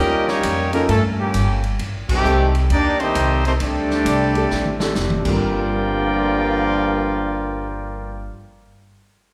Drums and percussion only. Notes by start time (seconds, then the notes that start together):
0.28 snare
0.43 kick, hi-hat pedal, ride
0.73 ride
0.89 kick, ride
1.34 kick, hi-hat pedal, ride
1.63 ride
1.79 kick, ride
2.09 kick, crash
2.25 hi-hat pedal
2.55 ride
2.70 kick, ride
3.00 ride
3.15 kick, hi-hat pedal, ride
3.45 ride
3.60 kick, ride
3.91 snare
4.06 kick, hi-hat pedal, ride
4.35 ride
4.51 snare
4.65 mid tom
4.80 snare
4.95 snare, hi-hat pedal
5.10 mid tom
5.25 kick, crash